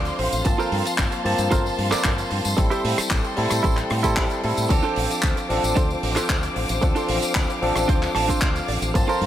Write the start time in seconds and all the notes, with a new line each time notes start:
Already playing: F3 C4 D4 A4 C5 D5 F5 C6
0.05 closed hi-hat, tambourine
0.18 A1 C5, muted clean electric guitar stroke, open hi-hat
0.32 A1, closed hi-hat, tambourine
0.45 G1 F3 A#3 C4 A5 C6, muted clean electric guitar stroke, kick, closed hi-hat, tambourine
0.58 F4 A4 A#4 C5, tambourine
0.72 G2, open hi-hat
0.85 closed hi-hat, tambourine
0.98 G1, kick, clap, closed hi-hat, tambourine
1.11 muted clean electric guitar stroke, closed hi-hat, tambourine
1.24 G2 F3 A#3 C4 A5, open hi-hat
1.38 G2, closed hi-hat, tambourine
1.51 G1 F4 A4 A#4 C5, kick, closed hi-hat, tambourine
1.66 tambourine
1.77 G2, muted clean electric guitar stroke, open hi-hat
1.91 F4 A4 A#4 D5, muted fingered electric bass stroke, cross-stick, clap, closed hi-hat, tambourine
2.04 G1, kick, clap, closed hi-hat, tambourine
2.18 closed hi-hat, tambourine
2.30 G2, muted clean electric guitar stroke, open hi-hat
2.45 G2, closed hi-hat, tambourine
2.57 A1 G3 C4 E4 A4 G5, muted clean electric guitar stroke, kick, closed hi-hat, tambourine
2.70 E4 G4 A4 C5, closed hi-hat, tambourine
2.85 A2, open hi-hat
2.98 muted fingered electric bass stroke, cross-stick, closed hi-hat, tambourine
3.10 A1, kick, clap, closed hi-hat
3.23 muted clean electric guitar stroke, closed hi-hat, tambourine
3.37 A2 G3 C4 E4 A4, open hi-hat
3.50 A2, cross-stick, closed hi-hat, tambourine
3.63 A1 E4 G4 A4 C5, kick, closed hi-hat, tambourine
3.77 clap, closed hi-hat, tambourine
3.90 A2, muted clean electric guitar stroke, cross-stick, open hi-hat
4.03 G3 C4 E4 G4 A4 C5, kick, closed hi-hat, tambourine
4.17 A1, kick, clap, open hi-hat, tambourine
4.30 closed hi-hat, tambourine
4.43 A2 G3 C4 E4 A4, muted clean electric guitar stroke, open hi-hat
4.57 A2, closed hi-hat, tambourine
4.69 D2 F3 C4 D4 A4 C5 F5 D6, muted clean electric guitar stroke, kick, closed hi-hat, crash, tambourine
4.83 D4 F4 A4 C5, tambourine
4.96 A1, open hi-hat
5.11 closed hi-hat, tambourine
5.22 D2, kick, clap, closed hi-hat, tambourine
5.36 muted clean electric guitar stroke, closed hi-hat, tambourine
5.49 A1 F3 C4 D4 A4, open hi-hat
5.63 A1, closed hi-hat, tambourine
5.75 D2 D4 F4 A4 C5, kick, closed hi-hat, tambourine
5.90 tambourine
6.02 A1, muted clean electric guitar stroke, open hi-hat
6.16 D4 F4 A4 C5, muted fingered electric bass stroke, cross-stick, clap, closed hi-hat, tambourine
6.30 D2, kick, clap, closed hi-hat, tambourine
6.43 closed hi-hat, tambourine
6.55 A1, muted clean electric guitar stroke, open hi-hat
6.69 A1, closed hi-hat, tambourine
6.82 D2 F3 C4 D4 A4, muted clean electric guitar stroke, kick, closed hi-hat, tambourine
6.95 D4 F4 A4 C5, closed hi-hat, tambourine
7.09 A1, open hi-hat
7.22 closed hi-hat, tambourine
7.35 D2, kick, clap, closed hi-hat
7.48 muted clean electric guitar stroke, closed hi-hat, tambourine
7.61 A1 F3 C4 D4 A4, open hi-hat
7.76 A1, cross-stick, closed hi-hat, tambourine
7.88 D2 D4 F4 A4 C5, kick, closed hi-hat, tambourine
8.03 clap, tambourine
8.14 A1 A5, muted clean electric guitar stroke, cross-stick, open hi-hat
8.28 D4 F4 A4 C5, muted fingered electric bass stroke, kick, closed hi-hat, tambourine
8.41 D2 F5, kick, clap, closed hi-hat
8.56 closed hi-hat, tambourine
8.68 A1 D5, muted clean electric guitar stroke, open hi-hat
8.82 A1, closed hi-hat, tambourine
8.94 G1 F3 A#3 C4 A5 C6, muted clean electric guitar stroke, kick, closed hi-hat, tambourine
9.08 F4 A4 A#4 C5, tambourine
9.21 G2, open hi-hat